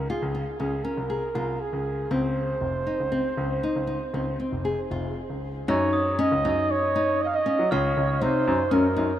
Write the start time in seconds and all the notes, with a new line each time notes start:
0.10 F4 G#4
0.22 C#2
0.35 F4
0.60 C#2 C#4 G#4
0.84 C#4 A#4
0.97 C2
1.10 G#4
1.35 C2 F4
1.61 G#4
1.73 C#2
2.11 C#2 C4 C5
2.61 F1
2.87 D#4
3.00 C#2
3.12 C4
3.37 C#2
3.63 D#4
3.76 C#2
3.87 D#4
4.14 C#2 C4
4.40 C4
4.52 F1
4.65 G#4
4.91 F1 F4
5.30 C#2
5.68 F#2 D#4 C#5
5.93 D#6
6.19 C#4 D#5
6.32 C#2
6.45 F#2 D#4
6.71 C#5
6.96 D#4
7.22 D#5 F5
7.34 D#5
7.46 C#4
7.59 F#3
7.71 C#2 F4 C#5 F6
7.97 C#2
8.21 C3 D#4 C5
8.47 F#2
8.71 F#2 C#4 A#4
8.96 F#2 D#4